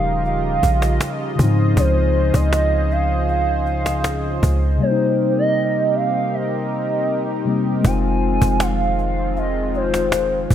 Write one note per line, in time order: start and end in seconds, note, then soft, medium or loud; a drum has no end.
0.00 0.59 D#1 loud
0.00 1.33 C#3 medium
0.00 4.77 C#3 medium
0.00 1.34 F3 medium
0.00 1.36 G3 medium
0.00 1.37 D#4 medium
0.00 4.77 F4 medium
0.00 1.36 G4 medium
0.00 1.36 A#4 medium
0.00 7.80 D#5 medium
0.00 0.23 F5 loud
0.25 1.35 F5 loud
0.25 cajon slap soft
0.63 1.00 A#1 loud
0.63 cajon bass medium
0.82 cajon slap medium
1.01 cajon slap medium
1.35 1.76 G#2 loud
1.35 4.37 C#3 medium
1.35 1.45 D#3 medium
1.35 4.77 G#4 medium
1.35 4.77 C5 medium
1.35 cajon bass medium
1.40 4.39 C4 medium
1.40 4.41 D#4 medium
1.44 4.41 F3 medium
1.77 2.32 C#2 loud
1.77 2.36 C5 medium
1.77 cajon bass loud
2.34 4.39 C#2 loud
2.34 2.93 D#5 loud
2.34 cajon bass medium
2.53 cajon slap loud
2.91 3.29 F5 loud
2.91 cajon slap soft
3.29 4.39 F5 loud
3.29 cajon slap soft
3.66 cajon slap soft
3.86 cajon slap medium
4.04 cajon slap medium
4.43 4.79 C#2 loud
4.43 cajon bass medium
4.77 7.41 C3 medium
4.77 7.42 G3 medium
4.77 7.82 C4 medium
4.77 7.82 D#4 medium
4.77 7.82 G4 medium
4.81 7.43 A#3 medium
4.81 4.89 C#4 medium
4.81 7.82 A#4 medium
4.81 5.34 C5 medium
4.91 7.48 D#4 medium
5.39 5.97 D#5 loud
5.95 6.35 F5 loud
6.34 7.47 D#5 loud
7.45 7.84 C3 medium
7.45 7.84 G3 medium
7.45 7.85 A#3 medium
7.45 7.82 C4 medium
7.81 8.39 F1 loud
7.81 10.55 D#3 medium
7.81 10.55 F3 medium
7.81 10.55 G#3 medium
7.81 10.55 C4 medium
7.81 10.55 D#4 medium
7.81 10.55 F4 medium
7.81 cajon bass loud
7.85 10.55 F4 medium
7.85 10.55 C5 medium
7.85 8.63 G#5 loud
8.42 10.46 F1 loud
8.42 cajon bass medium
8.60 9.39 F5 loud
8.60 cajon slap loud
8.98 cajon slap soft
9.37 9.77 D#5 medium
9.37 cajon slap soft
9.74 10.51 C5 medium
9.74 cajon slap soft
9.94 cajon slap medium
10.12 cajon slap medium
10.50 10.55 F1 loud
10.50 cajon bass medium